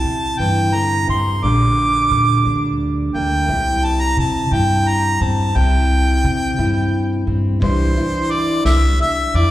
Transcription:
Already playing: C3 E4 A5
0.04 C3
0.39 G2 E3 G5
0.73 D3 A#5
1.07 G2 C3 C6
1.42 A#1 A#2 D3 G3 A#3 D4 D6
2.11 A#2
2.45 D2 D4
3.14 D2 A#3 G5
3.48 C2 C3 E4
3.85 A5
4.01 A#5
4.17 C3 A5
4.51 G2 E4 G5
4.89 A#5
5.21 G2 C4 A5
5.55 C2 C3 E4 G5
6.24 C3
6.58 G2 E4
7.27 G2 C4
7.60 C2 C3 E3 G3 D4 E4 C5, kick, closed hi-hat
7.96 E4, closed hi-hat
8.31 D5, closed hi-hat
8.64 C2 E3 E5, snare, closed hi-hat
9.00 D4 E5, closed hi-hat
9.34 F2 E4 D5, closed hi-hat

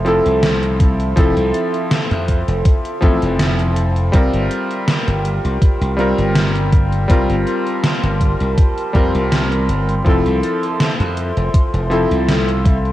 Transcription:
Already playing: F1 F3 C4 E4 A4 E5 C6
0.05 F3 C4 E4 A4, closed hi-hat
0.26 C2, closed hi-hat
0.43 snare, closed hi-hat
0.63 closed hi-hat
0.80 kick, closed hi-hat
1.00 closed hi-hat
1.16 F1 F3 C4 E4 A4, kick, closed hi-hat
1.37 C2, closed hi-hat
1.54 closed hi-hat
1.74 closed hi-hat
1.91 snare, closed hi-hat
2.11 F2, closed hi-hat
2.28 kick, closed hi-hat
2.48 F1, closed hi-hat
2.65 kick, closed hi-hat
2.85 closed hi-hat
3.01 A1 F3 C4 E4 A4, kick, closed hi-hat
3.22 F1, closed hi-hat
3.39 snare, closed hi-hat
3.59 closed hi-hat
3.76 closed hi-hat
3.96 closed hi-hat
4.12 C2 G3 C4 F4 A#4 G5 C6, kick, closed hi-hat
4.33 G1, closed hi-hat
4.51 closed hi-hat
4.71 closed hi-hat
4.88 snare, closed hi-hat
5.08 G1, closed hi-hat
5.25 closed hi-hat
5.44 C2, closed hi-hat
5.62 kick, closed hi-hat
5.81 C2, closed hi-hat
5.97 G3 C4 F4 A#4, closed hi-hat
6.18 G1, closed hi-hat
6.36 snare, closed hi-hat
6.56 closed hi-hat
6.73 kick, closed hi-hat
6.93 closed hi-hat
7.08 C2 G3 C4 F4 A#4 A5, kick, closed hi-hat
7.30 G1, closed hi-hat
7.47 closed hi-hat
7.67 closed hi-hat
7.84 snare, closed hi-hat
8.03 G1, closed hi-hat
8.21 kick, closed hi-hat
8.40 C2, closed hi-hat
8.58 kick, closed hi-hat
8.78 closed hi-hat
8.93 F2 G3 C4 F4 A#4, kick, closed hi-hat
9.15 C2, closed hi-hat
9.32 snare, closed hi-hat
9.52 closed hi-hat
9.69 G1, closed hi-hat
9.89 closed hi-hat
10.05 F1 F3 C4 E4 A4 E5, kick, closed hi-hat
10.26 C2, closed hi-hat
10.43 closed hi-hat
10.63 closed hi-hat
10.80 snare, closed hi-hat
11.00 F2, closed hi-hat
11.17 closed hi-hat
11.37 F1, closed hi-hat
11.54 kick, closed hi-hat
11.74 F1, closed hi-hat
11.90 F3 C4 E4 A4, closed hi-hat
12.11 C2, closed hi-hat
12.28 snare, closed hi-hat
12.48 closed hi-hat
12.65 kick, closed hi-hat
12.85 closed hi-hat

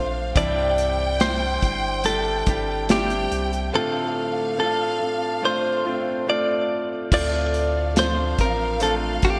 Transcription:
Already playing: A#1 A3 C4 D4 F4 A4 C5 F5
0.35 C2 G2 C3 E3 G3 C4 D4 E4 C5 D5 G5, kick, closed hi-hat
0.78 closed hi-hat
1.20 G3 C4 D4 E4 C5, snare, closed hi-hat
1.62 G1 G3 D4 E4 C5, kick, closed hi-hat
2.04 G3 C4 D4 E4 A4 C5, closed hi-hat
2.46 G1 G3 C4 D4 E4 G4 C5, kick, closed hi-hat
2.89 G3 C4 D4 E4 G4 C5 G5, snare, closed hi-hat
3.10 closed hi-hat
3.32 C2, closed hi-hat
3.53 closed hi-hat
3.73 A2 D3 A3 C4 D4 F4 A4 F5
4.57 A3 C4 D4 F4 A4
5.00 C4 F4 A4
5.42 A3 C4 D4 F4 A4 C5
5.84 A3 C4 D4 F4 A4
6.26 A3 C4 D4 F4 A4 D5
7.11 D2 A2 D3 A3 C4 D4 F4 A4 D5 F5, kick, crash
7.54 closed hi-hat
7.96 F3 A3 C4 D4 F4 A4 C5, snare, closed hi-hat
8.38 A1 C4 F4 A#4, kick, closed hi-hat
8.80 A3 C4 D4 F4 A4, closed hi-hat
9.22 A1 A3 C4 D4 F4 G4 A4, kick, closed hi-hat

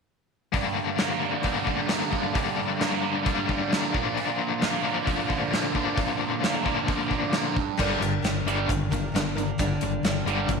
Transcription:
0.52 G2 D3 G3 A#3 D4, kick, open hi-hat
0.98 A#3, snare, open hi-hat
1.23 D3
1.43 G2 D3 G3 A#3 D4, kick, open hi-hat
1.67 D3, kick
1.89 A#3, snare, open hi-hat
2.12 D3, kick
2.35 G2 D3 G3 A#3 D4, kick, open hi-hat
2.81 A#3, snare, open hi-hat
3.04 D3
3.24 G2 D3 G3 A#3 D4, kick, open hi-hat
3.49 D3, kick
3.72 A#3, snare, open hi-hat
3.93 A#2 D3 F3 A#3 D4, kick
4.17 A#2, open hi-hat
4.62 A#3, snare, open hi-hat
4.84 A#2 D3 F3 A#3 D4
5.06 F3, kick, open hi-hat
5.28 D3, kick
5.52 A#3, snare, open hi-hat
5.75 A#2 D3 F3 A#3 D4, kick
5.97 A#2, kick, open hi-hat
6.42 A#3, snare, open hi-hat
6.65 A#2 D3 F3 A#3 D4, kick
6.88 F3, kick, open hi-hat
7.10 D3, kick
7.33 A#3, snare, open hi-hat
7.55 G2, kick
7.77 G1 G2 D3 G3 A#3 D4 A#4, kick, crash
8.01 G1 G2 D3, closed hi-hat
8.22 G1 G2 D3 G3 A#3 D4 A#4, snare, closed hi-hat
8.46 G1 G2 D3 G3, closed hi-hat
8.69 G1 G2 D3, kick, closed hi-hat
8.90 G1 G2 D3 G3 A#3 D4 A#4, kick, closed hi-hat
9.12 G1 G2 D3 G3 A#3 D4 A#4, closed hi-hat
9.16 snare
9.35 G2 D3 G3 A#3 D4 A#4, closed hi-hat
9.58 G1 G2 D3 G3 A#3 D4 A#4, kick, closed hi-hat
9.81 G1 G2 D3, closed hi-hat
10.03 G1 G2 D3 G3 A#3 D4 A#4, snare, closed hi-hat
10.26 G1 G2 D3 G3, closed hi-hat
10.49 G1 G2 D3, kick, closed hi-hat

